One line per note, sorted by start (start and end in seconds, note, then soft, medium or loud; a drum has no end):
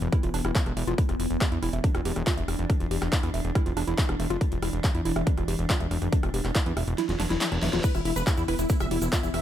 0.00 0.08 E1 loud
0.00 7.83 E3 medium
0.00 1.00 B3 medium
0.00 closed hi-hat soft
0.13 0.19 E4 loud
0.13 kick loud
0.13 cross-stick soft
0.13 closed hi-hat medium
0.23 0.30 E1 medium
0.23 0.28 F4 medium
0.23 closed hi-hat soft
0.34 0.41 E1 loud
0.34 0.37 D4 loud
0.34 open hi-hat loud
0.45 0.51 E1 loud
0.45 0.49 E4 loud
0.45 cross-stick medium
0.45 closed hi-hat soft
0.55 0.60 E4 medium
0.55 kick loud
0.55 clap loud
0.55 closed hi-hat medium
0.66 0.73 E1 medium
0.66 0.71 D4 medium
0.66 cross-stick soft
0.66 closed hi-hat soft
0.77 0.83 E1 loud
0.77 0.81 E5 medium
0.77 open hi-hat loud
0.87 0.94 E1 medium
0.87 0.94 F4 loud
0.87 closed hi-hat soft
0.98 7.86 D4 medium
0.98 1.01 E4 medium
0.98 kick loud
0.98 closed hi-hat medium
1.09 1.16 E1 medium
1.09 1.13 F4 medium
1.09 cross-stick soft
1.09 closed hi-hat soft
1.20 1.26 E1 loud
1.20 1.26 E4 medium
1.20 open hi-hat loud
1.30 1.37 E1 medium
1.30 closed hi-hat soft
1.41 1.44 G4 medium
1.41 kick loud
1.41 cross-stick medium
1.41 clap loud
1.41 closed hi-hat medium
1.52 1.58 E2 medium
1.52 1.56 E4 medium
1.52 closed hi-hat soft
1.63 1.69 E1 loud
1.63 1.67 E4 loud
1.63 cross-stick soft
1.63 open hi-hat loud
1.73 1.80 E1 loud
1.73 1.78 E5 medium
1.73 closed hi-hat soft
1.84 1.87 D4 medium
1.84 kick loud
1.84 closed hi-hat medium
1.95 2.01 E1 medium
1.95 1.99 F4 medium
1.95 cross-stick medium
1.95 closed hi-hat soft
2.05 2.12 E1 loud
2.05 2.10 G4 medium
2.05 open hi-hat loud
2.16 2.23 E1 medium
2.16 cross-stick soft
2.16 closed hi-hat soft
2.27 2.31 F4 loud
2.27 kick loud
2.27 clap loud
2.27 closed hi-hat medium
2.37 2.44 E1 medium
2.37 2.40 E5 medium
2.37 closed hi-hat soft
2.48 2.55 E1 loud
2.48 cross-stick medium
2.48 open hi-hat medium
2.59 2.66 F1 medium
2.59 closed hi-hat soft
2.70 2.72 D4 medium
2.70 kick loud
2.70 cross-stick soft
2.70 closed hi-hat medium
2.80 2.87 E1 medium
2.80 2.85 F4 medium
2.80 closed hi-hat soft
2.91 2.98 E1 loud
2.91 2.96 G4 medium
2.91 open hi-hat loud
3.02 3.08 E1 medium
3.02 cross-stick medium
3.02 clap soft
3.02 closed hi-hat soft
3.12 3.17 E4 medium
3.12 kick loud
3.12 clap loud
3.12 closed hi-hat medium
3.23 3.30 E2 medium
3.23 3.26 E4 medium
3.23 cross-stick soft
3.23 closed hi-hat soft
3.34 3.40 E1 loud
3.34 3.38 E5 medium
3.34 open hi-hat loud
3.45 3.51 E1 medium
3.45 closed hi-hat soft
3.55 3.62 E4 loud
3.55 kick loud
3.55 cross-stick medium
3.55 closed hi-hat medium
3.66 3.73 E1 medium
3.66 3.71 F4 medium
3.66 closed hi-hat soft
3.77 3.83 E1 loud
3.77 3.79 D4 loud
3.77 cross-stick soft
3.77 open hi-hat loud
3.87 3.94 E1 medium
3.87 3.92 E4 loud
3.87 closed hi-hat soft
3.98 4.03 E4 medium
3.98 kick loud
3.98 clap loud
3.98 closed hi-hat medium
4.09 4.15 E1 medium
4.09 4.13 D4 medium
4.09 cross-stick medium
4.09 closed hi-hat soft
4.20 4.26 E1 loud
4.20 4.24 E5 medium
4.20 open hi-hat medium
4.30 4.37 F1 medium
4.30 4.37 F4 loud
4.30 cross-stick soft
4.30 closed hi-hat soft
4.41 4.44 E4 medium
4.41 kick loud
4.41 closed hi-hat medium
4.52 4.58 E1 medium
4.52 4.56 F4 medium
4.52 closed hi-hat soft
4.62 4.69 E1 loud
4.62 4.69 E4 medium
4.62 cross-stick medium
4.62 open hi-hat loud
4.73 4.80 E1 medium
4.73 closed hi-hat soft
4.84 4.87 G4 medium
4.84 kick loud
4.84 cross-stick soft
4.84 clap loud
4.84 closed hi-hat medium
4.95 5.01 E2 medium
4.95 4.99 E4 medium
4.95 closed hi-hat soft
5.05 5.12 E1 loud
5.05 5.10 E4 loud
5.05 open hi-hat medium
5.16 5.23 E1 medium
5.16 5.21 E5 medium
5.16 cross-stick medium
5.16 closed hi-hat soft
5.27 5.29 D4 medium
5.27 kick loud
5.27 closed hi-hat medium
5.37 5.44 E1 medium
5.37 5.42 F4 medium
5.37 cross-stick soft
5.37 closed hi-hat soft
5.48 5.55 E1 loud
5.48 5.53 G4 medium
5.48 open hi-hat loud
5.59 5.66 E1 loud
5.59 closed hi-hat soft
5.70 5.74 F4 loud
5.70 kick loud
5.70 cross-stick medium
5.70 clap loud
5.70 closed hi-hat medium
5.80 5.87 E1 medium
5.80 5.83 E5 medium
5.80 closed hi-hat soft
5.91 5.98 E1 loud
5.91 cross-stick soft
5.91 open hi-hat medium
6.02 6.08 F1 medium
6.02 closed hi-hat soft
6.12 6.15 D4 medium
6.12 kick loud
6.12 closed hi-hat medium
6.23 6.30 E1 medium
6.23 6.28 F4 medium
6.23 cross-stick medium
6.23 closed hi-hat soft
6.34 6.41 E1 loud
6.34 6.38 G4 medium
6.34 open hi-hat loud
6.45 6.51 E1 medium
6.45 cross-stick soft
6.45 clap soft
6.45 closed hi-hat soft
6.55 6.60 E4 medium
6.55 kick loud
6.55 clap loud
6.55 closed hi-hat medium
6.66 6.73 E2 medium
6.66 6.69 E4 medium
6.66 closed hi-hat soft
6.77 6.83 E1 loud
6.77 6.81 E5 medium
6.77 cross-stick medium
6.77 open hi-hat medium
6.87 6.94 E1 loud
6.87 closed hi-hat soft
6.98 7.05 E4 loud
6.98 snare medium
6.98 closed hi-hat medium
6.98 reverse cymbal medium
7.09 7.16 E1 medium
7.09 7.13 F4 medium
7.09 snare medium
7.09 closed hi-hat soft
7.20 7.26 E1 loud
7.20 7.22 D4 loud
7.20 snare medium
7.20 open hi-hat loud
7.30 7.37 E1 medium
7.30 7.35 E4 loud
7.30 snare medium
7.30 closed hi-hat soft
7.41 7.46 E4 medium
7.41 snare medium
7.41 clap loud
7.41 closed hi-hat medium
7.52 7.58 E1 medium
7.52 7.56 D4 medium
7.52 closed hi-hat soft
7.62 7.69 E1 loud
7.62 7.67 E5 medium
7.62 snare loud
7.62 open hi-hat medium
7.73 7.80 E1 medium
7.73 7.80 F4 loud
7.73 snare medium
7.73 closed hi-hat soft
7.84 9.42 E3 medium
7.84 9.42 B3 medium
7.84 7.87 E4 medium
7.84 7.89 B4 loud
7.84 kick loud
7.84 closed hi-hat medium
7.84 crash medium
7.84 shaker medium
7.95 8.01 E1 medium
7.95 8.00 E4 medium
7.95 7.99 F4 medium
7.95 cross-stick soft
7.95 closed hi-hat soft
7.95 shaker soft
8.05 8.12 E1 loud
8.05 8.12 E4 medium
8.05 8.11 E4 medium
8.05 open hi-hat loud
8.16 8.23 E1 medium
8.16 8.21 B4 medium
8.16 closed hi-hat soft
8.16 shaker medium
8.27 8.32 E4 medium
8.27 8.29 G4 medium
8.27 kick loud
8.27 cross-stick medium
8.27 clap loud
8.27 closed hi-hat medium
8.27 shaker medium
8.37 8.44 E2 medium
8.37 8.42 E4 medium
8.37 8.43 E4 medium
8.37 closed hi-hat soft
8.37 shaker soft
8.48 8.55 E1 loud
8.48 8.53 E4 loud
8.48 8.53 B4 medium
8.48 cross-stick soft
8.48 open hi-hat loud
8.59 8.66 E1 medium
8.59 8.64 E4 medium
8.59 8.63 E5 medium
8.59 closed hi-hat soft
8.59 shaker medium
8.69 8.72 D4 medium
8.69 8.75 E4 medium
8.69 kick loud
8.69 closed hi-hat medium
8.69 shaker medium
8.80 8.87 E1 medium
8.80 8.85 F4 medium
8.80 8.86 E5 loud
8.80 cross-stick medium
8.80 closed hi-hat soft
8.80 shaker soft
8.91 8.98 E1 loud
8.91 8.96 E4 medium
8.91 8.96 G4 medium
8.91 open hi-hat loud
9.02 9.08 E1 medium
9.02 9.07 E4 medium
9.02 cross-stick soft
9.02 closed hi-hat soft
9.02 shaker medium
9.12 9.17 F4 loud
9.12 9.18 E5 medium
9.12 kick loud
9.12 clap loud
9.12 closed hi-hat medium
9.12 shaker medium
9.23 9.30 E1 medium
9.23 9.28 E4 medium
9.23 9.26 E5 medium
9.23 closed hi-hat soft
9.23 shaker soft
9.34 9.41 E1 loud
9.34 9.39 E5 medium
9.34 cross-stick medium
9.34 open hi-hat loud